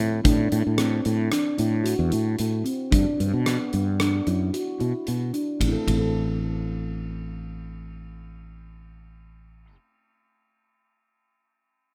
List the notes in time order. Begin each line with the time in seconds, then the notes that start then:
Already playing: A2
0.24 A2 D4, kick, closed hi-hat
0.52 A2, closed hi-hat
0.67 A2
0.78 C4, cross-stick, closed hi-hat
1.05 A2, closed hi-hat
1.32 D4, cross-stick, closed hi-hat
1.58 A2 E4, closed hi-hat
1.84 F#4, closed hi-hat
1.99 E2
2.11 A2 E4, closed hi-hat
2.39 A2, closed hi-hat
2.64 C4, closed hi-hat
2.91 G2 D4, kick, closed hi-hat
3.20 G2, closed hi-hat
3.34 B2
3.46 B3, cross-stick, closed hi-hat
3.73 G2, closed hi-hat
4.00 D4, cross-stick, closed hi-hat
4.27 F#2 E4, closed hi-hat
4.53 F#4, closed hi-hat
4.80 B2 E4, closed hi-hat
5.07 B2, closed hi-hat
5.34 D4, closed hi-hat
5.60 A1 A3, kick, ride
5.64 C4
5.68 E4
5.73 A4
5.87 A1 A3, kick, ride
5.91 C4
5.95 E4
5.99 A4